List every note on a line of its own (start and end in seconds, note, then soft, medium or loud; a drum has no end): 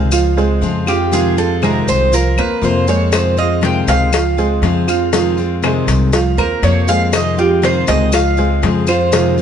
0.00 0.58 C#2 loud
0.00 0.11 C3 medium
0.00 0.11 D#3 medium
0.00 0.11 G#3 medium
0.00 0.12 C4 medium
0.00 0.12 F4 medium
0.00 0.34 F5 medium
0.12 0.33 F3 medium
0.12 0.33 F4 medium
0.12 0.33 F5 medium
0.12 muted steel-string acoustic guitar stroke medium
0.12 claves medium
0.12 maracas loud
0.36 0.78 G#3 medium
0.36 0.61 G#3 soft
0.36 0.62 C4 soft
0.36 0.61 F4 soft
0.36 0.78 G#4 medium
0.36 0.79 C5 medium
0.36 maracas soft
0.61 1.81 F2 medium
0.61 0.86 C#3 medium
0.61 0.86 F3 medium
0.61 0.86 G#3 medium
0.61 0.86 C4 medium
0.61 0.85 F4 medium
0.61 maracas soft
0.86 1.08 F3 medium
0.86 1.11 G#3 soft
0.86 1.11 C4 medium
0.86 1.11 F4 medium
0.86 1.08 F4 medium
0.86 1.12 G4 medium
0.86 1.08 F5 medium
0.86 claves medium
0.86 maracas medium
1.12 1.36 C3 medium
1.12 1.36 D#3 medium
1.12 1.54 F3 medium
1.12 1.37 G#3 medium
1.12 1.37 C4 medium
1.12 1.54 F4 medium
1.12 1.36 F4 medium
1.12 1.37 G#4 medium
1.12 1.54 F5 medium
1.12 maracas medium
1.37 1.62 G#3 soft
1.37 1.62 C4 medium
1.37 1.61 F4 medium
1.37 1.62 A4 medium
1.37 maracas soft
1.62 2.11 C3 medium
1.62 2.12 D#3 medium
1.62 2.04 G#3 medium
1.62 2.12 G#3 medium
1.62 2.12 C4 medium
1.62 2.12 F4 medium
1.62 2.04 G#4 medium
1.62 1.88 A#4 medium
1.62 2.04 C5 medium
1.62 claves medium
1.62 maracas soft
1.87 2.34 C2 medium
1.87 2.12 C5 loud
1.87 maracas medium
2.12 2.33 F3 medium
2.12 2.34 F4 medium
2.12 2.38 A#4 medium
2.12 2.34 F5 medium
2.12 muted steel-string acoustic guitar stroke medium
2.12 maracas medium
2.37 2.61 D#2 medium
2.37 2.79 A#3 medium
2.37 2.61 A#3 soft
2.37 2.62 C4 soft
2.37 2.61 F4 soft
2.37 2.79 A#4 medium
2.37 2.62 B4 loud
2.37 2.79 C5 medium
2.37 claves medium
2.37 maracas soft
2.61 3.81 F2 loud
2.61 2.86 C3 medium
2.61 2.86 F3 medium
2.61 2.87 A#3 medium
2.61 2.87 C4 medium
2.61 2.85 F4 medium
2.61 2.88 C5 medium
2.61 maracas soft
2.87 3.29 G#3 medium
2.87 3.12 A#3 soft
2.87 3.12 C4 medium
2.87 3.11 F4 medium
2.87 3.29 G#4 medium
2.87 3.29 C5 medium
2.87 3.13 C#5 medium
2.87 maracas medium
3.11 3.36 C3 medium
3.11 3.36 D#3 medium
3.11 3.37 G#3 medium
3.11 3.36 C4 medium
3.11 3.35 F4 medium
3.11 3.38 C5 medium
3.11 cowbell loud
3.11 claves medium
3.11 maracas medium
3.37 3.79 F3 medium
3.37 3.61 G#3 soft
3.37 3.62 C4 soft
3.37 3.61 F4 medium
3.37 3.79 F4 medium
3.37 3.62 D#5 medium
3.37 3.79 F5 medium
3.37 maracas soft
3.61 4.11 C3 medium
3.61 4.11 D#3 medium
3.61 4.11 G#3 medium
3.61 4.12 C4 medium
3.61 4.12 F4 medium
3.61 3.88 G5 medium
3.61 cowbell medium
3.61 maracas soft
3.87 4.58 C#2 medium
3.87 4.09 G#3 medium
3.87 4.09 G#4 medium
3.87 4.09 C5 medium
3.87 5.10 F5 loud
3.87 cowbell medium
3.87 maracas medium
4.12 4.34 F3 medium
4.12 4.34 F4 medium
4.12 4.34 F5 medium
4.12 muted steel-string acoustic guitar stroke medium
4.12 cowbell loud
4.12 claves medium
4.12 maracas loud
4.37 4.79 G#3 medium
4.37 4.62 G#3 soft
4.37 4.62 C4 soft
4.37 4.61 F4 medium
4.37 4.79 G#4 medium
4.37 4.79 C5 medium
4.37 maracas soft
4.62 5.81 F2 loud
4.62 4.87 C#3 medium
4.62 4.87 F3 medium
4.62 4.87 G#3 medium
4.62 4.87 C4 medium
4.62 4.86 F4 medium
4.62 cowbell medium
4.62 maracas soft
4.87 5.08 F3 medium
4.87 5.12 G#3 soft
4.87 5.12 C4 medium
4.87 5.12 F4 medium
4.87 5.09 F4 medium
4.87 5.09 F5 medium
4.87 claves medium
4.87 maracas medium
5.12 5.37 C3 medium
5.12 5.37 D#3 medium
5.12 5.54 F3 medium
5.12 5.37 G#3 medium
5.12 5.37 C4 medium
5.12 5.55 F4 medium
5.12 5.36 F4 medium
5.12 5.55 F5 medium
5.12 cowbell loud
5.12 maracas loud
5.37 5.63 G#3 soft
5.37 5.62 C4 medium
5.37 5.62 F4 soft
5.37 maracas soft
5.62 6.12 C3 medium
5.62 6.12 D#3 medium
5.62 6.04 G#3 medium
5.62 6.12 G#3 medium
5.62 6.12 C4 medium
5.62 6.13 F4 medium
5.62 6.04 G#4 medium
5.62 6.04 C5 medium
5.62 cowbell medium
5.62 claves medium
5.62 maracas soft
5.87 6.34 C2 medium
5.87 cowbell medium
5.87 maracas medium
6.13 6.34 F3 medium
6.13 6.34 F4 medium
6.13 6.34 F5 medium
6.13 muted steel-string acoustic guitar stroke medium
6.13 cowbell loud
6.13 maracas medium
6.37 6.61 D#2 medium
6.37 6.79 A#3 medium
6.37 6.62 A#3 soft
6.37 6.62 C4 soft
6.37 6.62 F4 medium
6.37 6.62 A#4 medium
6.37 6.79 A#4 medium
6.37 6.80 C5 medium
6.37 claves medium
6.37 maracas soft
6.62 7.81 F2 loud
6.62 6.87 C3 medium
6.62 6.87 F3 medium
6.62 6.87 A#3 medium
6.62 6.87 C4 medium
6.62 6.86 F4 medium
6.62 6.88 C#5 medium
6.62 cowbell medium
6.62 maracas soft
6.88 7.29 G#3 medium
6.88 7.13 A#3 soft
6.88 7.12 C4 medium
6.88 7.12 F4 medium
6.88 7.30 G#4 medium
6.88 7.30 C5 medium
6.88 7.13 F5 loud
6.88 maracas medium
7.12 7.36 C3 medium
7.12 7.37 D#3 medium
7.12 7.37 G#3 medium
7.12 7.37 C4 medium
7.12 7.36 F4 medium
7.12 7.39 D#5 medium
7.12 cowbell loud
7.12 claves medium
7.12 maracas medium
7.37 7.79 F3 medium
7.37 7.62 G#3 soft
7.37 7.62 C4 soft
7.37 7.61 F4 medium
7.37 7.79 F4 medium
7.37 7.63 G4 medium
7.37 7.80 F5 medium
7.37 maracas soft
7.62 8.11 C3 medium
7.62 8.12 D#3 medium
7.62 8.12 G#3 medium
7.62 8.12 C4 medium
7.62 8.12 F4 medium
7.62 7.88 C5 medium
7.62 cowbell medium
7.62 maracas soft
7.87 8.59 C#2 loud
7.87 8.09 G#3 medium
7.87 8.09 G#4 medium
7.87 8.09 C5 medium
7.87 8.12 D#5 loud
7.87 cowbell medium
7.87 maracas medium
8.12 8.33 F3 medium
8.12 8.34 F4 medium
8.12 8.34 F5 medium
8.12 8.85 F5 loud
8.12 muted steel-string acoustic guitar stroke medium
8.12 cowbell medium
8.12 claves medium
8.12 maracas medium
8.37 8.79 G#3 medium
8.37 8.63 G#3 soft
8.37 8.62 C4 soft
8.37 8.62 F4 soft
8.37 8.79 G#4 medium
8.37 8.79 C5 medium
8.37 maracas soft
8.63 9.42 F2 loud
8.63 8.87 C#3 medium
8.63 8.87 F3 medium
8.63 8.87 G#3 medium
8.63 8.87 C4 medium
8.63 8.86 F4 medium
8.63 cowbell medium
8.63 maracas soft
8.87 9.09 F3 medium
8.87 9.12 G#3 soft
8.87 9.12 C4 soft
8.87 9.12 F4 medium
8.87 9.09 F4 medium
8.87 9.42 C5 medium
8.87 9.09 F5 loud
8.87 claves medium
8.87 maracas medium
9.12 9.36 C3 medium
9.12 9.37 D#3 medium
9.12 9.42 F3 medium
9.12 9.37 G#3 medium
9.12 9.37 C4 medium
9.12 9.42 F4 medium
9.12 9.36 F4 medium
9.12 9.42 F5 medium
9.12 cowbell loud
9.12 maracas medium
9.37 9.42 C4 medium
9.37 9.42 F4 medium
9.37 maracas soft